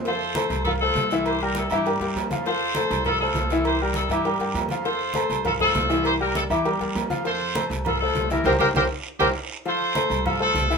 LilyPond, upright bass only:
\new Staff \with { instrumentName = "Upright bass" } { \clef bass \time 4/4 \key f \major \tempo 4 = 200 f,4. c,4. c,4~ | c,4. g,4 g,8 f,4~ | f,4. c,4. c,4~ | c,4. g,4 g,8 f,4~ |
f,4. c,4. c,4~ | c,4. e,4 e,8 f,4~ | f,4. c,4. c,4 | c,8 c,8 c,8 r4 c,8 r4 |
r4. c,4. c,4 | }